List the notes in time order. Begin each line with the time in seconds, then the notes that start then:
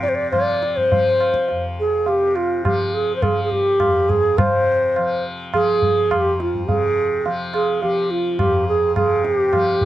Already playing: F2 C3 F3
0.03 D5, tabla te
0.09 C5
0.15 D5
0.31 F3 D5, tabla na, tabla ge
0.62 tabla te
0.76 C5, tabla ge
0.92 F3, tabla tin, tabla ge
1.20 tabla na
1.34 tabla ke
1.48 F2, tabla tin
1.80 G#4
2.06 C3 G4, tabla tin
2.36 F4, tabla na
2.65 F3 G4, tabla na, tabla ge
2.94 G#4
3.16 C5
3.22 F3 G#4, tabla na, tabla ge
3.44 G#4
3.51 G4, tabla ge
3.80 tabla na, tabla ge
3.84 F2
4.09 G#4, tabla ge
4.38 C3 C5, tabla na, tabla ge
4.96 F3, tabla na
5.54 F3 G#4, tabla na, tabla ge
5.82 tabla ge
6.11 F2 G4, tabla na, tabla ge
6.40 F4, tabla te
6.55 tabla ge
6.69 C3 G#4, tabla tin, tabla ge
7.26 F3, tabla tin
7.54 G#4, tabla na
7.82 F3 G4, tabla tin
8.11 F4
8.39 F2 G4, tabla na, tabla ge
8.68 G#4
8.96 C3 G#4, tabla na, tabla ge
9.25 G#4, tabla te
9.37 G4
9.53 F3, tabla na, tabla ge
9.81 tabla ge